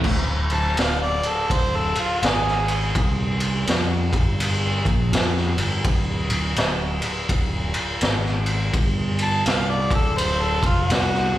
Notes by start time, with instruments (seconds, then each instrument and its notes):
0.04 picked electric bass D1, kick, crash
0.50 picked electric bass D1, harmonica A5, ride
0.77 picked electric bass D1, harmonica F5, snare, ride
1.02 harmonica D5
1.23 ride
1.28 harmonica A4
1.50 picked electric bass D1, harmonica C5, kick, ride
1.76 harmonica A4
1.95 ride
2.00 harmonica F4
2.22 picked electric bass G#1, harmonica G#4, snare, ride
2.48 snare
2.68 ride
2.95 picked electric bass C2, kick, ride
3.40 ride
3.67 picked electric bass F2, snare, ride
4.13 picked electric bass G1, kick, ride
4.40 ride
4.85 picked electric bass A#1, kick, ride
5.12 picked electric bass F2, snare, ride
5.37 snare
5.57 picked electric bass G1, ride
5.84 picked electric bass D1, kick, ride
6.29 picked electric bass D1, ride
6.56 picked electric bass D1, snare, ride
7.02 ride
7.29 picked electric bass D1, kick, ride
7.74 ride
8.01 picked electric bass G#1, snare, ride
8.25 snare
8.46 ride
8.73 picked electric bass G1, kick, ride
9.19 harmonica A5, ride
9.46 picked electric bass C2, harmonica F5, snare, ride
9.70 harmonica D5
9.90 picked electric bass D1, harmonica A4, kick, ride
10.18 harmonica C5, ride
10.42 harmonica A4
10.63 picked electric bass F1, harmonica F4, kick, ride
10.90 picked electric bass C2, harmonica F#4, snare, ride
11.14 snare
11.34 picked electric bass D1